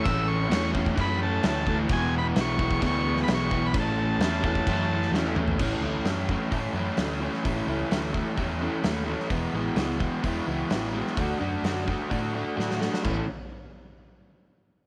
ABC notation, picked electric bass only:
X:1
M:4/4
L:1/8
Q:1/4=129
K:A
V:1 name="Picked electric bass" clef=bass
A,,,2 E,,2 F,,2 D,,2 | E,,,2 B,,,2 D,,2 B,,,2 | A,,,2 E,,2 F,,2 E,,2 | A,,, D,, F,,2 A,, F,, D,,2 |
A,,, C,, D,,2 E,,2 ^D,,2 | E,,, A,,, C,,2 E,, C,, A,,,2 | D,, F,, F,,2 A,,2 A,,2 | A,,, z6 z |]